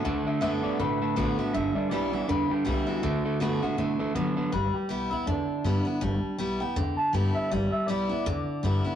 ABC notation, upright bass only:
X:1
M:4/4
L:1/8
Q:"Swing" 1/4=161
K:G
V:1 name="Upright bass" clef=bass
D,, z F,, A,, B,, z A,,, z | G,,, z B,,, D,, E,, z C,, z | D,, z F,, A,, B,, z D, z | G,,, z B,,, D,, E,, z G,, z |
G,,, z B,,, D,, E,, z G,, z | G,,, z B,,, D,, E,, z G,, z |]